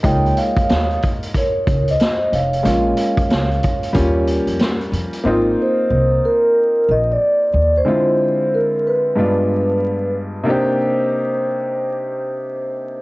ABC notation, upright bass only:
X:1
M:4/4
L:1/16
Q:"Swing 16ths" 1/4=92
K:Cm
V:1 name="Upright bass" clef=bass
_D,,2 z2 E,,2 z4 D,,2 z2 F,,,2 | B,,,2 z2 _D,,2 z2 E,,3 F,, z2 F,, z | A,,,2 z2 C,,2 z4 B,,,2 z2 E,,2 | z16 |
z16 |]